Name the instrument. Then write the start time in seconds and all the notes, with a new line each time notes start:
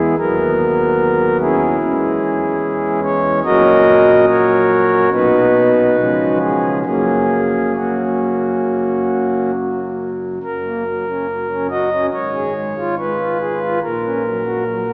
pipe organ
Already playing: E1 E2 E3 G#3 B3 E4 G#4
0.18 D#1 D#2 F#3 B3 A#4
1.40 C#4 E4 G#4
1.81 E1 E2 E3 G#3 C#4
3.04 C#5
3.45 A#1 A#2 F#3 C#4 F#4 A#4 D#5
4.28 F#4 A#4 C#5
5.12 B1 B2 F#3 B3 D#4 F#4 B4
5.97 C#3 F3 G#3 C#4
6.41 G#4
6.85 F#1 F#2 F#3 A#3 C#4 G#4
7.76 A#3 C#4 F#4
10.43 F#1 F#2 A#4
10.64 A#3
10.86 F#3
11.07 C#4
11.28 F#3
11.49 C#4
11.71 F#4 D#5
11.91 C#4
12.13 G#1 G#2 C#5
12.35 G#4
12.56 G#3
12.77 F4
12.98 G#3 B4
13.20 F4
13.41 G#4
13.61 F4
13.82 A#1 A#2 A#4
14.03 C#4
14.24 F#3
14.45 F#4
14.66 F#3
14.87 F#4